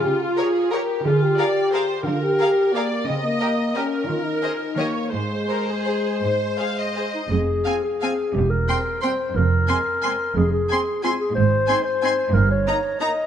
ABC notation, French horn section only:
X:1
M:3/4
L:1/8
Q:1/4=176
K:Ab
V:1 name="French horn section"
G F3 B2 | A G4- G | F G3 B,2 | C B,3 D2 |
F E3 B,2 | A,6- | A,4- A, z | [K:Fm] z2 [F,C]2 [F,C]2 |
z2 [G,C]2 [G,C]2 | z2 [A,C]2 [A,C]2 | z2 [A,C]2 [A,C]2 | z2 [A,E]2 [A,E]2 |
z2 [B,E]2 [B,E]2 |]